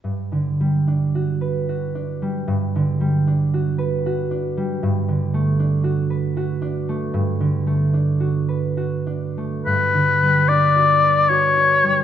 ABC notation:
X:1
M:3/4
L:1/8
Q:1/4=75
K:G
V:1 name="Oboe"
z6 | z6 | z6 | z6 |
B2 d2 ^c2 |]
V:2 name="Harp"
(3G,, D, G, (3D F B (3F D G, | (3G,, D, G, (3D F B (3F D G, | (3G,, D, A, (3D F B (3F D A, | (3G,, D, A, (3D F B (3F D A, |
(3G,, D, G, (3D F B (3F D G, |]